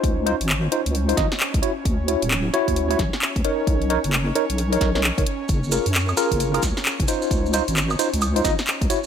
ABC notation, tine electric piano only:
X:1
M:4/4
L:1/16
Q:"Swing 16ths" 1/4=132
K:C#mix
V:1 name="Tine electric piano"
[DE^B]2 [DEB] z3 [DEB] z2 [DEB] [DEd] z3 [=EFc] z | z2 [=EFc] z3 [EFc]3 [EFc] z4 [DAc]2- | [DAc]2 [DAc] z3 [DAc] z2 [DAc] [DAc] [DAc] z [DAc] z2 | z2 [EGA] z3 [EGA]3 [EGA] z4 [DE^B]2- |
[DE^B]2 [DEB] z3 [DEB] z2 [DEB] [DEd] z3 [=EFc] z |]